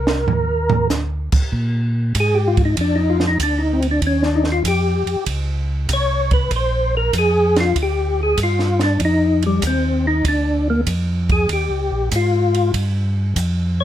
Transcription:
Already playing: tonewheel organ C2 A#4
0.07 snare
0.27 tonewheel organ D#2, floor tom
0.70 floor tom
0.90 tonewheel organ D2, snare, hi-hat pedal
1.32 tonewheel organ D2, kick, crash
1.52 tonewheel organ A#2, kick
2.15 tonewheel organ G#2, kick, hi-hat pedal, ride
2.20 tonewheel organ G#4
2.35 tonewheel organ G4
2.47 tonewheel organ F4
2.57 kick, ride
2.65 tonewheel organ D#4
2.77 tonewheel organ F2, kick, ride
2.81 tonewheel organ D4
2.95 tonewheel organ D#4
3.10 tonewheel organ F4
3.20 snare
3.28 tonewheel organ D#4
3.40 tonewheel organ D2 D4, kick, hi-hat pedal, ride
3.58 tonewheel organ D#4
3.73 tonewheel organ C4
3.82 ride
3.91 tonewheel organ D4
4.02 tonewheel organ D#2, kick, ride
4.07 tonewheel organ C#4
4.22 tonewheel organ D4, snare
4.35 tonewheel organ D#4
4.44 snare
4.52 tonewheel organ F4
4.64 tonewheel organ F2 G4, kick, hi-hat pedal, ride
5.06 tonewheel organ F2, ride
5.26 tonewheel organ C#2, kick, ride
5.89 tonewheel organ C2, kick, hi-hat pedal, ride
5.93 tonewheel organ C#5
6.31 tonewheel organ B4, kick, ride
6.51 tonewheel organ A#1, kick, ride
6.56 tonewheel organ C5
6.97 tonewheel organ A#4
7.13 tonewheel organ F2, kick, hi-hat pedal, ride
7.18 tonewheel organ G#4
7.56 snare, ride
7.60 tonewheel organ F4
7.75 tonewheel organ D2, kick, ride
7.82 tonewheel organ G4
8.23 tonewheel organ G#4
8.37 tonewheel organ G2, kick, hi-hat pedal, ride
8.43 tonewheel organ F4
8.59 snare
8.79 snare, ride
8.84 tonewheel organ D4
9.00 tonewheel organ F2, kick, ride
9.05 tonewheel organ D#4
9.42 tonewheel organ G3, ride
9.62 tonewheel organ D#2, kick, hi-hat pedal, ride
9.67 tonewheel organ C4
10.07 tonewheel organ D#4
10.24 tonewheel organ D2 D4, kick, ride
10.70 tonewheel organ A#3
10.87 tonewheel organ F2, kick, hi-hat pedal, ride
11.29 tonewheel organ G#4, kick, ride
11.49 tonewheel organ D#2, kick, ride
11.53 tonewheel organ G4
11.70 tonewheel organ C#2
11.90 tonewheel organ A#1
12.11 tonewheel organ G#2, kick, hi-hat pedal, ride
12.16 tonewheel organ F4
12.54 ride
12.74 tonewheel organ G2, kick, ride
13.36 tonewheel organ F2, kick, hi-hat pedal, ride
13.80 tonewheel organ C#5

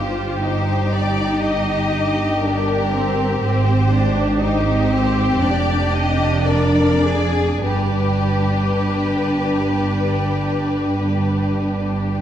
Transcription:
Already playing: double bass section G1, cello section G2, viola section F4, violin section G4 C5
0.42 viola section D#4, violin section C5
0.93 violin section D5
1.42 violin section D#5
2.41 viola section D4, violin section A#4
2.92 viola section C4
3.41 double bass section G#1, cello section G#2, viola section C4, violin section C5
3.92 viola section D4
4.40 viola section D#4, violin section G4 C5
4.90 viola section C4
5.40 double bass section F1, cello section F2, viola section D4, violin section D5
5.92 violin section D#5
6.46 violin section A#4 D5
7.02 violin section G#4
7.61 double bass section G1, cello section G2, viola section D4, violin section G4 B4

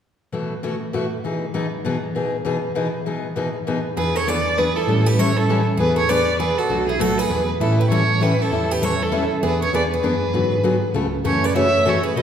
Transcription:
0.32 steel-string acoustic guitar B2 E3 A3 E4 F#4
0.63 steel-string acoustic guitar B2 E3 A3 E4 F#4
0.93 steel-string acoustic guitar B2 E3 A3 E4 F#4
1.24 steel-string acoustic guitar B2 E3 B3 D#4 G#4
1.54 steel-string acoustic guitar B2 E3 B3 D#4 G#4
1.85 steel-string acoustic guitar B2 E3 B3 D#4 G#4
2.15 steel-string acoustic guitar B2 E3 B3 D#4 G#4
2.45 steel-string acoustic guitar B2 E3 B3 D#4 G#4
2.75 steel-string acoustic guitar B2 E3 B3 D#4 G#4
3.06 steel-string acoustic guitar B2 E3 B3 D#4 G#4
3.36 steel-string acoustic guitar B2 E3 B3 D#4 G#4
3.67 steel-string acoustic guitar B2 E3 B3 D#4 G#4
3.97 tine electric piano E2, steel-string acoustic guitar E3 B3 D4 G#4, violin B4
4.16 steel-string acoustic guitar A4, violin C#5
4.27 steel-string acoustic guitar E3 B3 D4 G#4 B4, violin D5
4.57 steel-string acoustic guitar E3 B3 D4 G#4, violin B4
4.76 steel-string acoustic guitar E4, violin A4
4.87 tine electric piano A2, steel-string acoustic guitar E3 G3 C#4 E4 A4
5.06 steel-string acoustic guitar G4, violin B4
5.18 steel-string acoustic guitar E3 G3 C#4 E4 A4, violin C#5
5.36 steel-string acoustic guitar E4, violin A4
5.49 steel-string acoustic guitar E3 G3 C#4 E4 A4
5.77 tine electric piano E2, steel-string acoustic guitar E3 B3 D4 G#4, violin B4
5.96 steel-string acoustic guitar A4, violin C#5
6.09 steel-string acoustic guitar E3 B3 D4 G#4 B4, violin D5
6.39 steel-string acoustic guitar E3 B3 D4 G#4, violin B4
6.58 steel-string acoustic guitar F#4, violin A4
6.69 tine electric piano B1, steel-string acoustic guitar B2 F#3 A3 D4 F#4
6.88 steel-string acoustic guitar E4, violin G#4
6.99 steel-string acoustic guitar B2 F#3 A3 D4 F#4, violin A4
7.18 steel-string acoustic guitar G#4, violin B4
7.30 tine electric piano E2, steel-string acoustic guitar E3 B3 D4 G#4
7.60 tine electric piano A2, steel-string acoustic guitar E3 G3 C#4 E4 A4, violin A4
7.79 steel-string acoustic guitar G4, violin B4
7.90 steel-string acoustic guitar E3 G3 C#4 E4 A4, violin C#5
8.20 steel-string acoustic guitar E3 G3 C#4 E4 G4 A4, violin B4
8.41 steel-string acoustic guitar E4, violin A4
8.51 tine electric piano E2, steel-string acoustic guitar E3 G3 C#4 E4 A4
8.71 steel-string acoustic guitar G4, violin B4
8.82 steel-string acoustic guitar E3 G3 C#4 E4 A4, violin C#5
9.01 steel-string acoustic guitar E4, violin A4
9.12 steel-string acoustic guitar E3 G3 C#4 E4 A4
9.42 tine electric piano E2, steel-string acoustic guitar E3 B3 D4 G#4, violin B4
9.62 steel-string acoustic guitar A4, violin C#5
9.73 tine electric piano E2, steel-string acoustic guitar E3 B3 D4 G#4 B4, violin D5
9.92 steel-string acoustic guitar G#4, violin B4
10.03 tine electric piano F#2, steel-string acoustic guitar E3 B3 D4 G#4
10.33 tine electric piano G#2, steel-string acoustic guitar D3 F#3 B3 F#4 G#4
10.63 steel-string acoustic guitar D3 F#3 B3 F#4 G#4
10.94 tine electric piano C#2, steel-string acoustic guitar C#3 A3 B3 F4 A4
11.24 tine electric piano F#2, steel-string acoustic guitar C#3 E3 A3 C#4 F#4 A4, violin C#5
11.44 steel-string acoustic guitar B4, violin D5
11.55 steel-string acoustic guitar C#3 E3 A3 C#4 F#4 C#5, violin E5
11.85 steel-string acoustic guitar C#3 E3 A3 C#4 F#4 A4, violin C#5
12.03 steel-string acoustic guitar G#4, violin B4
12.15 tine electric piano B2, steel-string acoustic guitar B2 F#3 A3 D#4 F#4 B4, violin D#5

